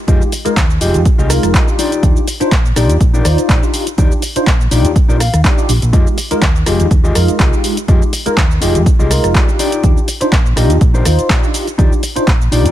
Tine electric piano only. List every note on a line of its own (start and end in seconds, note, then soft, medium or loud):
0.07 0.30 G#3 medium
0.07 0.30 D#4 medium
0.07 0.30 F4 medium
0.07 0.30 G4 loud
0.45 0.58 G#3 loud
0.45 0.58 D#4 medium
0.45 0.58 F4 medium
0.45 0.59 A#4 loud
0.81 1.03 G#3 medium
0.81 1.03 D#4 medium
0.81 1.03 F4 medium
0.81 1.03 G4 loud
1.19 1.28 G#3 medium
1.19 1.28 D#4 medium
1.19 1.28 F4 medium
1.19 1.29 G#4 medium
1.30 1.64 G#3 loud
1.30 1.64 D#4 medium
1.30 1.65 F4 medium
1.30 1.65 A#4 loud
1.67 1.89 D4 medium
1.67 1.89 D#4 medium
1.67 1.89 F4 medium
1.67 1.90 G4 medium
2.02 2.25 D4 medium
2.02 2.25 D#4 medium
2.02 2.25 F4 medium
2.02 2.25 G4 loud
2.40 2.53 D4 loud
2.40 2.54 D#4 medium
2.40 2.54 F4 medium
2.40 2.54 C5 loud
2.76 2.98 D4 medium
2.76 2.98 D#4 medium
2.76 2.98 F4 medium
2.76 2.99 G4 loud
3.14 3.23 D4 medium
3.14 3.23 D#4 medium
3.14 3.24 F4 medium
3.14 3.24 A#4 medium
3.25 3.60 D#4 medium
3.25 3.60 F4 medium
3.25 3.60 C5 loud
3.25 3.59 D5 medium
3.62 3.84 D4 medium
3.62 3.85 D#4 medium
3.62 3.85 F4 medium
3.62 3.85 G4 loud
3.98 4.20 D4 medium
3.98 4.21 D#4 medium
3.98 4.21 F4 medium
3.98 4.21 G4 loud
4.36 4.49 D4 loud
4.36 4.49 D#4 medium
4.36 4.49 F4 medium
4.36 4.49 C5 loud
4.71 4.94 D4 medium
4.71 4.94 D#4 medium
4.71 4.94 F4 medium
4.71 4.94 G4 loud
5.09 5.19 D4 medium
5.09 5.19 D#4 medium
5.09 5.19 F4 medium
5.09 5.19 A#4 medium
5.44 5.55 D4 medium
5.44 5.55 D#4 medium
5.44 5.55 F4 medium
5.44 5.55 G4 loud
5.58 5.71 D4 loud
5.58 5.71 D#4 medium
5.58 5.71 F4 medium
5.58 5.71 G4 loud
5.93 6.16 G#3 medium
5.93 6.16 D#4 medium
5.93 6.16 F4 medium
5.93 6.16 G4 loud
6.31 6.44 G#3 loud
6.31 6.44 D#4 medium
6.31 6.44 F4 medium
6.31 6.44 A#4 loud
6.67 6.89 G#3 medium
6.67 6.89 D#4 medium
6.67 6.89 F4 medium
6.67 6.89 G4 loud
7.04 7.14 G#3 medium
7.04 7.14 D#4 medium
7.04 7.14 F4 medium
7.04 7.14 G#4 medium
7.16 7.50 G#3 medium
7.16 7.50 D#4 medium
7.16 7.50 F4 medium
7.16 7.50 A#4 loud
7.53 7.75 G#3 medium
7.53 7.75 D#4 medium
7.53 7.75 F4 medium
7.53 7.75 G4 medium
7.89 8.11 G#3 medium
7.89 8.11 D#4 medium
7.89 8.11 F4 medium
7.89 8.11 G4 loud
8.26 8.39 G#3 loud
8.26 8.39 D#4 medium
8.26 8.39 F4 medium
8.26 8.39 A#4 loud
8.62 8.84 G#3 medium
8.62 8.84 D#4 medium
8.62 8.84 F4 medium
8.62 8.84 G4 loud
8.99 9.09 G#3 medium
8.99 9.09 D#4 medium
8.99 9.09 F4 medium
8.99 9.09 G#4 medium
9.10 9.45 G#3 medium
9.10 9.45 D#4 medium
9.10 9.45 F4 medium
9.10 9.45 A#4 loud
9.48 9.70 D4 medium
9.48 9.70 D#4 medium
9.48 9.70 F4 medium
9.48 9.70 G4 medium
9.83 10.06 D4 medium
9.83 10.06 D#4 medium
9.83 10.06 F4 medium
9.83 10.06 G4 loud
10.21 10.34 D4 loud
10.21 10.34 D#4 medium
10.21 10.34 F4 medium
10.21 10.34 C5 loud
10.56 10.79 D4 medium
10.56 10.79 D#4 medium
10.56 10.79 F4 medium
10.56 10.79 G4 loud
10.94 11.04 D4 medium
10.94 11.04 D#4 medium
10.94 11.04 F4 medium
10.94 11.04 A#4 medium
11.06 11.40 D#4 medium
11.06 11.40 F4 medium
11.06 11.40 C5 loud
11.43 11.65 D4 medium
11.43 11.65 D#4 medium
11.43 11.65 F4 medium
11.43 11.65 G4 medium
11.78 12.01 D4 medium
11.78 12.01 D#4 medium
11.78 12.01 F4 medium
11.78 12.01 G4 loud
12.16 12.29 D4 loud
12.16 12.29 D#4 medium
12.16 12.29 F4 medium
12.16 12.29 C5 loud
12.52 12.71 D4 medium
12.52 12.71 D#4 medium
12.52 12.71 F4 medium
12.52 12.71 G4 loud